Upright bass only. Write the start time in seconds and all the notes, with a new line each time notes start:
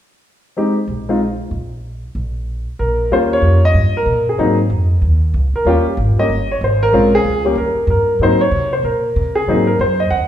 0.87 A#1
1.51 A#1
2.15 A#1
2.79 A#1
3.11 D#2
3.42 F2
3.74 G2
4.06 A#2
4.39 G#2
4.70 F2
5.02 D#2
5.34 C#2
5.53 muted upright bass stroke
5.65 D#2
5.85 muted upright bass stroke
5.97 G#1
6.17 muted upright bass stroke
6.29 G1
6.61 G#1
6.92 A#1
7.24 C#2
7.55 D#2
7.76 muted upright bass stroke
7.87 G2
8.19 G#2
8.52 C3
8.83 A#2
9.16 C3
9.47 G#2
9.79 F#2
10.11 D#2